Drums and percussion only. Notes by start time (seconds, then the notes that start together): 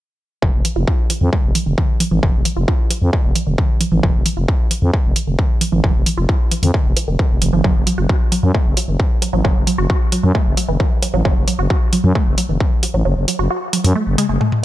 0.42 kick
0.65 open hi-hat
0.88 kick
1.10 open hi-hat
1.33 kick
1.55 open hi-hat
1.78 kick
2.00 open hi-hat
2.23 kick
2.45 open hi-hat
2.68 kick
2.91 open hi-hat
3.13 kick
3.36 open hi-hat
3.58 kick
3.81 open hi-hat
4.03 kick
4.26 open hi-hat
4.48 kick
4.71 open hi-hat
4.94 kick
5.16 open hi-hat
5.39 kick
5.61 open hi-hat
5.84 kick
6.06 open hi-hat
6.29 kick
6.51 open hi-hat
6.63 open hi-hat
6.74 kick
6.97 open hi-hat
7.19 kick
7.42 open hi-hat
7.64 kick
7.87 open hi-hat
8.09 kick
8.32 open hi-hat
8.55 kick
8.77 open hi-hat
9.00 kick
9.22 open hi-hat
9.45 kick
9.67 open hi-hat
9.90 kick
10.12 open hi-hat
10.35 kick
10.57 open hi-hat
10.80 kick
11.03 open hi-hat
11.25 kick
11.48 open hi-hat
11.70 kick
11.93 open hi-hat
12.15 kick
12.38 open hi-hat
12.60 kick
12.83 open hi-hat
13.28 open hi-hat
13.73 open hi-hat
13.84 open hi-hat
14.18 open hi-hat, high tom
14.41 mid tom
14.52 mid tom